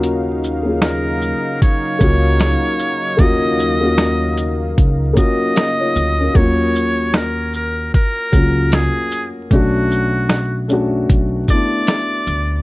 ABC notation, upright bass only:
X:1
M:4/4
L:1/16
Q:"Swing 16ths" 1/4=76
K:Ebm
V:1 name="Upright bass" clef=bass
E,,8 z2 D,,3 z3 | E,,8 D,,2 z4 =D,,2 | E,,8 z2 D,,3 z3 | =B,,,8 B,,,2 z4 =D,,2 |]